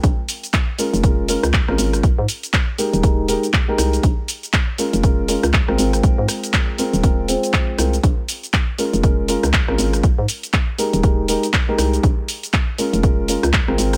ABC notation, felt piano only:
X:1
M:4/4
L:1/16
Q:"Swing 16ths" 1/4=120
K:Bbdor
V:1 name="Felt piano"
z6 [A,DFB]2 [A,DFB]2 [A,DFB] z2 [A,DFB]3 | z6 [A,EGB]2 [A,EGB]2 [A,EGB] z2 [A,EGB]3 | z6 [A,DFB]2 [A,DFB]2 [A,DFB] z2 [A,CFB]3- | [A,CFB]6 [A,CFB]2 [A,CFB]2 [A,CFc]4 [A,CFB] z |
z6 [A,DFB]2 [A,DFB]2 [A,DFB] z2 [A,DFB]3 | z6 [A,EGB]2 [A,EGB]2 [A,EGB] z2 [A,EGB]3 | z6 [A,DFB]2 [A,DFB]2 [A,DFB] z2 [A,CFB]3 |]